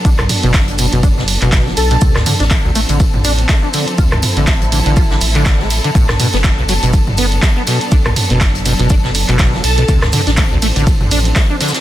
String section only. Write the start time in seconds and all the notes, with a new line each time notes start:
Already playing: F#3 B3 D4 A4
2.02 F3 C4 A4
3.98 E4
5.95 F#3 B3 D4
9.88 F3 C4